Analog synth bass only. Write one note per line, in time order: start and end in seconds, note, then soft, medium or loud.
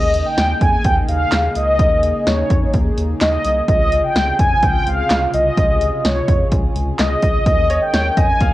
0.00 0.23 D#2 loud
0.38 0.54 D#2 loud
0.61 0.78 F2 medium
0.85 1.01 D#2 loud
1.08 1.25 D#2 loud
1.32 1.49 D#2 loud
1.56 1.81 C#2 loud
1.79 2.12 D#2 loud
2.27 2.43 D#2 loud
2.50 2.67 F2 medium
2.74 2.90 D#2 loud
2.98 3.14 D#2 loud
3.21 3.38 D#2 loud
3.45 3.61 C2 loud
3.68 4.01 C#2 loud
4.16 4.32 C#2 loud
4.39 4.56 F2 medium
4.63 4.79 C#2 loud
4.86 5.03 C#2 loud
5.10 5.27 C#2 loud
5.34 5.50 C2 medium
5.57 5.90 C#2 loud
6.05 6.21 C#2 loud
6.28 6.45 F2 loud
6.52 6.68 C#2 loud
6.75 6.92 C#2 loud
6.99 7.16 C#2 loud
7.23 7.39 C#2 medium
7.46 7.79 D#2 loud
7.94 8.10 D#2 loud
8.17 8.34 F2 medium
8.41 8.54 D#2 loud